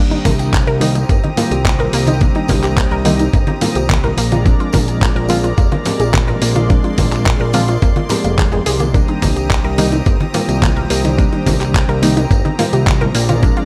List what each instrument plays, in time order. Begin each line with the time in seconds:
Already playing: reed electric piano D#3 G3 A#3, analog synth pad C4 G4 A#5 D#6
0.00 reed electric piano D4
0.11 synth arpeggio sound D#4, closed hi-hat
0.25 analog synth bass C2, synth arpeggio sound A#3, kick, open hi-hat, tambourine, high conga, low conga
0.39 synth arpeggio sound G4, closed hi-hat, tambourine
0.53 synth arpeggio sound A#3, kick, clap, closed hi-hat, tambourine
0.67 analog synth bass C2, synth arpeggio sound A#4, closed hi-hat
0.81 reed electric piano D#3 G3 A#3 D#4, synth arpeggio sound A#3, open hi-hat, tambourine, high conga
0.95 synth arpeggio sound D#4, closed hi-hat, tambourine
1.09 analog synth bass G1, synth arpeggio sound A#3, kick, closed hi-hat, tambourine
1.24 synth arpeggio sound D#4, closed hi-hat, high conga
1.36 reed electric piano D#3 G3 A#3 F4, synth arpeggio sound A#3, open hi-hat, tambourine, low conga
1.51 analog synth bass C2, synth arpeggio sound G4, closed hi-hat, tambourine
1.64 synth arpeggio sound A#3, kick, clap, closed hi-hat, tambourine, high conga
1.79 synth arpeggio sound A#4, closed hi-hat, low conga
1.93 analog synth bass C2, synth arpeggio sound A#3, open hi-hat, tambourine
2.07 synth arpeggio sound D#4, closed hi-hat, tambourine, high conga
2.20 reed electric piano D#3 G3 A#3 D4, synth arpeggio sound A#3, kick, closed hi-hat, tambourine
2.35 synth arpeggio sound D#4, closed hi-hat
2.48 analog synth bass C2, synth arpeggio sound A#3, kick, open hi-hat, tambourine, high conga, low conga
2.63 synth arpeggio sound G4, clap, closed hi-hat, tambourine
2.77 synth arpeggio sound A#3, kick, clap, closed hi-hat, tambourine
2.91 analog synth bass C2, synth arpeggio sound A#4, closed hi-hat
3.05 reed electric piano D#3 G3 A#3 D#4, synth arpeggio sound A#3, open hi-hat, tambourine, high conga
3.19 synth arpeggio sound D#4, closed hi-hat, tambourine
3.33 analog synth bass G1, synth arpeggio sound A#3, kick, closed hi-hat, tambourine
3.47 synth arpeggio sound D#4, closed hi-hat, high conga
3.61 reed electric piano D#3 G3 A#3 F4, synth arpeggio sound A#3, open hi-hat, tambourine, low conga
3.75 analog synth bass C2, synth arpeggio sound G4, closed hi-hat, tambourine
3.89 synth arpeggio sound A#3, kick, clap, closed hi-hat, tambourine, high conga
4.04 synth arpeggio sound A#4, closed hi-hat, low conga
4.17 analog synth bass A#1, analog synth pad G#3 A#3 D5 A#5, synth arpeggio sound A#3, open hi-hat, tambourine
4.32 synth arpeggio sound F4, closed hi-hat, tambourine, high conga
4.44 reed electric piano F3 G#3 C4 D4, synth arpeggio sound A#3, kick, closed hi-hat, tambourine
4.60 synth arpeggio sound F4, closed hi-hat
4.73 analog synth bass A#1, synth arpeggio sound A#3, kick, open hi-hat, tambourine, high conga, low conga
4.88 synth arpeggio sound G#4, closed hi-hat, tambourine
5.02 synth arpeggio sound A#3, kick, clap, closed hi-hat, tambourine
5.16 analog synth bass A#1, synth arpeggio sound A#4, closed hi-hat
5.29 reed electric piano F3 G#3 C4 F4, synth arpeggio sound A#3, open hi-hat, tambourine, high conga
5.43 synth arpeggio sound F4, closed hi-hat, tambourine
5.57 analog synth bass F1, synth arpeggio sound A#3, kick, closed hi-hat, tambourine
5.72 synth arpeggio sound F4, closed hi-hat, high conga
5.85 reed electric piano F3 G#3 C4 G4, synth arpeggio sound A#3, open hi-hat, tambourine, low conga
5.99 analog synth bass A#1, synth arpeggio sound G#4, closed hi-hat, tambourine
6.14 synth arpeggio sound A#3, kick, clap, closed hi-hat, tambourine, high conga
6.27 synth arpeggio sound A#4, closed hi-hat, low conga
6.42 analog synth bass A#1, synth arpeggio sound A#3, analog synth pad C6, open hi-hat, tambourine
6.55 synth arpeggio sound F4, closed hi-hat, tambourine, high conga
6.69 reed electric piano F3 G#3 C4 D4, synth arpeggio sound A#3, kick, closed hi-hat, tambourine
6.84 synth arpeggio sound F4, closed hi-hat
6.98 analog synth bass A#1, synth arpeggio sound A#3, kick, open hi-hat, tambourine, high conga, low conga
7.12 synth arpeggio sound G#4, clap, closed hi-hat, tambourine
7.26 synth arpeggio sound A#3, kick, clap, closed hi-hat, tambourine
7.40 analog synth bass A#1, synth arpeggio sound A#4, closed hi-hat
7.53 reed electric piano F3 G#3 C4 F4, synth arpeggio sound A#3, open hi-hat, tambourine, high conga
7.68 synth arpeggio sound F4, closed hi-hat, tambourine
7.82 analog synth bass F1, synth arpeggio sound A#3, kick, closed hi-hat, tambourine
7.96 synth arpeggio sound F4, closed hi-hat, high conga
8.09 reed electric piano F3 G#3 C4 G4, synth arpeggio sound A#4, open hi-hat, tambourine, low conga
8.24 analog synth bass F1, synth arpeggio sound A#3, closed hi-hat, tambourine
8.38 synth arpeggio sound G#4, kick, clap, closed hi-hat, tambourine, high conga
8.52 synth arpeggio sound G#4, closed hi-hat, low conga
8.66 analog synth bass C2, synth arpeggio sound G#4, open hi-hat, tambourine
8.79 synth arpeggio sound A#3, closed hi-hat, tambourine, high conga
8.93 reed electric piano D#3 G3 A#3 D4, synth arpeggio sound A#3, analog synth pad C4 G4 A#5 D#6, kick, closed hi-hat, tambourine
9.08 synth arpeggio sound D#4, closed hi-hat
9.22 analog synth bass C2, synth arpeggio sound A#3, kick, open hi-hat, tambourine, high bongo, high conga, low conga
9.36 synth arpeggio sound G4, closed hi-hat, tambourine
9.50 synth arpeggio sound A#3, kick, clap, closed hi-hat, tambourine
9.64 analog synth bass C2, synth arpeggio sound A#4, closed hi-hat
9.78 reed electric piano D#3 G3 A#3 D#4, synth arpeggio sound A#3, open hi-hat, tambourine, high conga
9.92 synth arpeggio sound D#4, closed hi-hat, tambourine, high bongo
10.06 analog synth bass G1, synth arpeggio sound A#3, kick, closed hi-hat, tambourine
10.20 synth arpeggio sound D#4, closed hi-hat, high conga
10.33 reed electric piano D#3 G3 A#3 F4, synth arpeggio sound A#3, open hi-hat, tambourine, high bongo, low conga
10.48 analog synth bass C2, synth arpeggio sound G4, closed hi-hat, tambourine
10.62 synth arpeggio sound A#3, kick, clap, closed hi-hat, tambourine, high conga
10.76 synth arpeggio sound A#4, closed hi-hat, low conga
10.90 analog synth bass C2, synth arpeggio sound A#3, open hi-hat, tambourine
11.05 synth arpeggio sound D#4, closed hi-hat, tambourine, high conga
11.17 reed electric piano D#3 G3 A#3 D4, synth arpeggio sound A#3, kick, closed hi-hat, tambourine
11.33 synth arpeggio sound D#4, closed hi-hat
11.46 analog synth bass C2, synth arpeggio sound A#3, kick, open hi-hat, tambourine, high bongo, high conga, low conga
11.61 synth arpeggio sound G4, clap, closed hi-hat, tambourine
11.75 synth arpeggio sound A#3, kick, clap, closed hi-hat, tambourine
11.89 analog synth bass C2, synth arpeggio sound A#4, closed hi-hat
12.02 reed electric piano D#3 G3 A#3 D#4, synth arpeggio sound A#3, open hi-hat, tambourine, high conga
12.17 synth arpeggio sound D#4, closed hi-hat, tambourine, high bongo
12.31 analog synth bass G1, synth arpeggio sound A#3, kick, closed hi-hat, tambourine
12.45 synth arpeggio sound D#4, closed hi-hat, high conga
12.58 reed electric piano D#3 G3 A#3 F4, synth arpeggio sound A#3, open hi-hat, tambourine, low conga
12.73 analog synth bass C2, synth arpeggio sound G4, closed hi-hat, tambourine
12.87 synth arpeggio sound A#3, kick, clap, closed hi-hat, tambourine, high conga
13.01 synth arpeggio sound A#4, closed hi-hat, high bongo, low conga
13.15 analog synth bass A#1, analog synth pad G#3 A#3 D5, synth arpeggio sound A#3, open hi-hat, tambourine
13.29 synth arpeggio sound F4, closed hi-hat, tambourine, high bongo, high conga
13.42 reed electric piano F3 G#3 C4 D4, synth arpeggio sound A#3, kick, closed hi-hat, tambourine
13.57 synth arpeggio sound F4, closed hi-hat